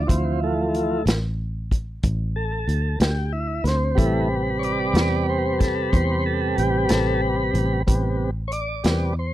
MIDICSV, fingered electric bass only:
0, 0, Header, 1, 2, 480
1, 0, Start_track
1, 0, Key_signature, 0, "minor"
1, 0, Tempo, 649351
1, 61, Time_signature, 12, 3, 24, 8
1, 6902, End_track
2, 0, Start_track
2, 0, Title_t, "Fingered electric bass"
2, 0, Program_c, 0, 33
2, 66, Note_on_c, 0, 38, 83
2, 754, Note_off_c, 0, 38, 0
2, 780, Note_on_c, 0, 33, 77
2, 1471, Note_off_c, 0, 33, 0
2, 1508, Note_on_c, 0, 33, 81
2, 1955, Note_off_c, 0, 33, 0
2, 1977, Note_on_c, 0, 38, 67
2, 2200, Note_off_c, 0, 38, 0
2, 2216, Note_on_c, 0, 38, 77
2, 2669, Note_off_c, 0, 38, 0
2, 2691, Note_on_c, 0, 38, 83
2, 2917, Note_off_c, 0, 38, 0
2, 2938, Note_on_c, 0, 33, 86
2, 3630, Note_off_c, 0, 33, 0
2, 3648, Note_on_c, 0, 40, 77
2, 4344, Note_off_c, 0, 40, 0
2, 4385, Note_on_c, 0, 40, 85
2, 4833, Note_off_c, 0, 40, 0
2, 4864, Note_on_c, 0, 33, 73
2, 5083, Note_off_c, 0, 33, 0
2, 5104, Note_on_c, 0, 33, 79
2, 5552, Note_off_c, 0, 33, 0
2, 5571, Note_on_c, 0, 33, 84
2, 5796, Note_off_c, 0, 33, 0
2, 5818, Note_on_c, 0, 33, 90
2, 6508, Note_off_c, 0, 33, 0
2, 6537, Note_on_c, 0, 40, 82
2, 6902, Note_off_c, 0, 40, 0
2, 6902, End_track
0, 0, End_of_file